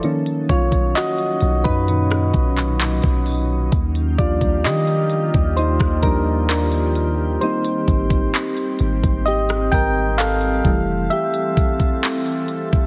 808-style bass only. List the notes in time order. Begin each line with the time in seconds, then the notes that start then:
0.50 B1
1.42 B1
1.65 F#2
2.34 B1
3.04 B1
3.72 D#2
4.19 D#2
4.65 D#3
5.34 D#2
5.80 D#2
7.88 G#1
8.80 G#1
9.04 G#1
9.73 G#1
10.65 F1